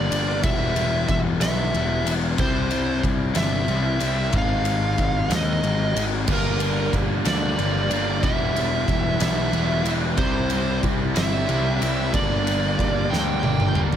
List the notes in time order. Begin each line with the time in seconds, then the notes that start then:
Already playing: G2 D3 G3 A#3 D5
0.10 G1 G3 A#3 D4, ride
0.42 E1 E3 G3 B3 E4 E5, kick, ride
0.75 G3 B3 E4, ride
1.08 E1 E5, kick, ride
1.41 B1 E3 G3 B3 E4 E5, snare, ride
1.74 E1 E3 G3 B3 E4, ride
2.05 E1 G3 B3 E4, ride
2.37 C2 C3 G3 C4 E4 C5, kick, ride
2.70 G3 C4 E4, ride
3.03 C2, kick, ride
3.34 G1 C3 G3 C4 E4 E5, snare, ride
3.67 C2 C3 G3 C4 E4, ride
3.99 C2 G3 C4 E4, ride
4.30 G#1 G#2 D#3 G#3 C4 D#4, kick, ride
4.37 F5
4.64 G#3 C4 D#4, ride
4.98 G#1, kick, ride
5.29 D#2 G#2 D#3 G#3 C4 D#4, snare, ride
5.35 D#5
5.61 G#1 D#3 G#3 C4 D#4, ride
5.94 G#1 G#3 C4 D#4, ride
6.26 G1 G2 D3 G3 A#3 D4, kick, crash
6.33 A#4
6.59 G3 A#3 D4, ride
6.93 G1, kick, ride
7.25 D2 G2 D3 G3 A#3 D4 D5, snare, ride
7.56 G1 D3 G3 A#3 D4, ride
7.89 G1 G3 A#3 D4, ride
8.21 E1 E3 G3 B3 E4 E5, kick, ride
8.54 G3 B3 E4, ride
8.88 E1, kick, ride
9.19 B1 E3 G3 B3 E4 E5, snare, ride
9.51 E1 E3 G3 B3 E4, ride
9.83 E1 G3 B3 E4, ride
10.16 C2 C3 G3 C4 E4 C5, kick, ride
10.49 G3 C4 E4, ride
10.83 C2, kick, ride
11.14 G1 C3 G3 C4 E4 E5, snare, ride
11.47 C2 C3 G3 C4 E4, ride
11.78 C2 G3 C4 E4, ride
12.11 G1 G2 D3 G3 A#3 D4 D5, kick, ride
12.44 G3 A#3 D4, ride
12.79 G1, kick, ride
13.10 D2 G2 D3 G3 A#3 D4 G5, snare
13.42 G1 D3 G3 A#3 D4, high tom
13.60 mid tom
13.74 G1 G3 A#3 D4, mid tom
13.92 floor tom